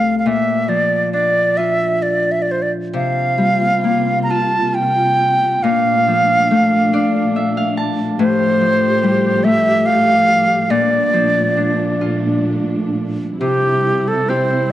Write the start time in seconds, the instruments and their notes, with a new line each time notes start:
Already playing: harp C2 C3 A3, flute F5
0.19 flute F5
0.26 harp A#2, flute E5
0.68 harp F3, flute D5
1.13 harp D4, flute D5
1.57 harp F4, flute E5
2.02 flute D5
2.31 flute E5
2.42 flute D5
2.51 flute C5
2.62 flute D5
2.92 string section C3 A#3 F4, harp C3, flute F5
3.38 harp G3
3.84 harp A#3
4.23 flute A#5
4.30 harp F4, flute A5
4.74 flute G5
5.61 string section A#2 A3 D4, harp A#2, flute F5
6.07 harp F3
6.51 harp A3
6.93 harp D4 D5
7.36 harp E5
7.57 harp F5
7.77 harp A5
8.18 string section A2 F3 G4, harp A2, flute C5
8.61 harp F3
9.03 harp G3
9.44 harp A3, flute E5
9.86 flute F5
10.69 string section A#2 A3 D4, harp A#2, flute D5
11.13 harp F3
11.57 harp D4
12.01 harp F4
13.40 harp C3, string section C3 G3 E4, flute G4
14.08 flute A4
14.29 harp C4 E4 G4, flute C5